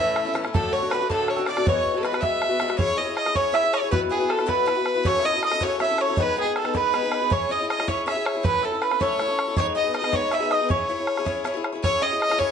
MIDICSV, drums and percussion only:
0, 0, Header, 1, 2, 480
1, 0, Start_track
1, 0, Key_signature, 4, "minor"
1, 0, Tempo, 376648
1, 686, Time_signature, 6, 3, 24, 8
1, 15947, End_track
2, 0, Start_track
2, 0, Title_t, "Bodhran"
2, 205, Note_on_c, 9, 64, 63
2, 332, Note_off_c, 9, 64, 0
2, 448, Note_on_c, 9, 64, 72
2, 568, Note_off_c, 9, 64, 0
2, 568, Note_on_c, 9, 64, 59
2, 696, Note_off_c, 9, 64, 0
2, 697, Note_on_c, 9, 64, 100
2, 825, Note_off_c, 9, 64, 0
2, 922, Note_on_c, 9, 64, 28
2, 1050, Note_off_c, 9, 64, 0
2, 1164, Note_on_c, 9, 64, 68
2, 1291, Note_off_c, 9, 64, 0
2, 1404, Note_on_c, 9, 64, 77
2, 1531, Note_off_c, 9, 64, 0
2, 1634, Note_on_c, 9, 64, 61
2, 1761, Note_off_c, 9, 64, 0
2, 1867, Note_on_c, 9, 64, 67
2, 1994, Note_off_c, 9, 64, 0
2, 2000, Note_on_c, 9, 64, 55
2, 2126, Note_off_c, 9, 64, 0
2, 2126, Note_on_c, 9, 64, 97
2, 2253, Note_off_c, 9, 64, 0
2, 2371, Note_on_c, 9, 64, 29
2, 2499, Note_off_c, 9, 64, 0
2, 2607, Note_on_c, 9, 64, 66
2, 2729, Note_off_c, 9, 64, 0
2, 2729, Note_on_c, 9, 64, 62
2, 2838, Note_off_c, 9, 64, 0
2, 2838, Note_on_c, 9, 64, 82
2, 2965, Note_off_c, 9, 64, 0
2, 3081, Note_on_c, 9, 64, 67
2, 3208, Note_off_c, 9, 64, 0
2, 3311, Note_on_c, 9, 64, 63
2, 3438, Note_off_c, 9, 64, 0
2, 3438, Note_on_c, 9, 64, 58
2, 3553, Note_off_c, 9, 64, 0
2, 3553, Note_on_c, 9, 64, 83
2, 3681, Note_off_c, 9, 64, 0
2, 4038, Note_on_c, 9, 64, 62
2, 4158, Note_off_c, 9, 64, 0
2, 4158, Note_on_c, 9, 64, 58
2, 4276, Note_off_c, 9, 64, 0
2, 4276, Note_on_c, 9, 64, 76
2, 4403, Note_off_c, 9, 64, 0
2, 4525, Note_on_c, 9, 64, 57
2, 4652, Note_off_c, 9, 64, 0
2, 4762, Note_on_c, 9, 64, 68
2, 4890, Note_off_c, 9, 64, 0
2, 5003, Note_on_c, 9, 64, 83
2, 5130, Note_off_c, 9, 64, 0
2, 5479, Note_on_c, 9, 64, 65
2, 5590, Note_off_c, 9, 64, 0
2, 5590, Note_on_c, 9, 64, 60
2, 5717, Note_off_c, 9, 64, 0
2, 5717, Note_on_c, 9, 64, 76
2, 5844, Note_off_c, 9, 64, 0
2, 5959, Note_on_c, 9, 64, 59
2, 6087, Note_off_c, 9, 64, 0
2, 6189, Note_on_c, 9, 64, 65
2, 6317, Note_off_c, 9, 64, 0
2, 6436, Note_on_c, 9, 64, 80
2, 6563, Note_off_c, 9, 64, 0
2, 6917, Note_on_c, 9, 64, 64
2, 7028, Note_off_c, 9, 64, 0
2, 7028, Note_on_c, 9, 64, 55
2, 7147, Note_off_c, 9, 64, 0
2, 7147, Note_on_c, 9, 64, 76
2, 7275, Note_off_c, 9, 64, 0
2, 7393, Note_on_c, 9, 64, 57
2, 7521, Note_off_c, 9, 64, 0
2, 7625, Note_on_c, 9, 64, 62
2, 7752, Note_off_c, 9, 64, 0
2, 7865, Note_on_c, 9, 64, 79
2, 7992, Note_off_c, 9, 64, 0
2, 8358, Note_on_c, 9, 64, 63
2, 8474, Note_off_c, 9, 64, 0
2, 8474, Note_on_c, 9, 64, 57
2, 8599, Note_off_c, 9, 64, 0
2, 8599, Note_on_c, 9, 64, 82
2, 8726, Note_off_c, 9, 64, 0
2, 8843, Note_on_c, 9, 64, 61
2, 8970, Note_off_c, 9, 64, 0
2, 9069, Note_on_c, 9, 64, 68
2, 9196, Note_off_c, 9, 64, 0
2, 9321, Note_on_c, 9, 64, 88
2, 9448, Note_off_c, 9, 64, 0
2, 9817, Note_on_c, 9, 64, 71
2, 9937, Note_off_c, 9, 64, 0
2, 9937, Note_on_c, 9, 64, 66
2, 10044, Note_off_c, 9, 64, 0
2, 10044, Note_on_c, 9, 64, 89
2, 10172, Note_off_c, 9, 64, 0
2, 10295, Note_on_c, 9, 64, 61
2, 10422, Note_off_c, 9, 64, 0
2, 10532, Note_on_c, 9, 64, 77
2, 10659, Note_off_c, 9, 64, 0
2, 10763, Note_on_c, 9, 64, 93
2, 10891, Note_off_c, 9, 64, 0
2, 11237, Note_on_c, 9, 64, 73
2, 11360, Note_off_c, 9, 64, 0
2, 11360, Note_on_c, 9, 64, 61
2, 11479, Note_off_c, 9, 64, 0
2, 11479, Note_on_c, 9, 64, 81
2, 11607, Note_off_c, 9, 64, 0
2, 11718, Note_on_c, 9, 64, 61
2, 11845, Note_off_c, 9, 64, 0
2, 11964, Note_on_c, 9, 64, 66
2, 12091, Note_off_c, 9, 64, 0
2, 12191, Note_on_c, 9, 64, 83
2, 12318, Note_off_c, 9, 64, 0
2, 12674, Note_on_c, 9, 64, 59
2, 12796, Note_off_c, 9, 64, 0
2, 12796, Note_on_c, 9, 64, 51
2, 12911, Note_off_c, 9, 64, 0
2, 12911, Note_on_c, 9, 64, 75
2, 13038, Note_off_c, 9, 64, 0
2, 13144, Note_on_c, 9, 64, 54
2, 13272, Note_off_c, 9, 64, 0
2, 13393, Note_on_c, 9, 64, 55
2, 13521, Note_off_c, 9, 64, 0
2, 13639, Note_on_c, 9, 64, 80
2, 13766, Note_off_c, 9, 64, 0
2, 14111, Note_on_c, 9, 64, 62
2, 14239, Note_off_c, 9, 64, 0
2, 14240, Note_on_c, 9, 64, 55
2, 14356, Note_off_c, 9, 64, 0
2, 14356, Note_on_c, 9, 64, 73
2, 14483, Note_off_c, 9, 64, 0
2, 14592, Note_on_c, 9, 64, 56
2, 14719, Note_off_c, 9, 64, 0
2, 14839, Note_on_c, 9, 64, 68
2, 14967, Note_off_c, 9, 64, 0
2, 15086, Note_on_c, 9, 64, 75
2, 15214, Note_off_c, 9, 64, 0
2, 15574, Note_on_c, 9, 64, 62
2, 15693, Note_off_c, 9, 64, 0
2, 15693, Note_on_c, 9, 64, 59
2, 15810, Note_off_c, 9, 64, 0
2, 15810, Note_on_c, 9, 64, 68
2, 15938, Note_off_c, 9, 64, 0
2, 15947, End_track
0, 0, End_of_file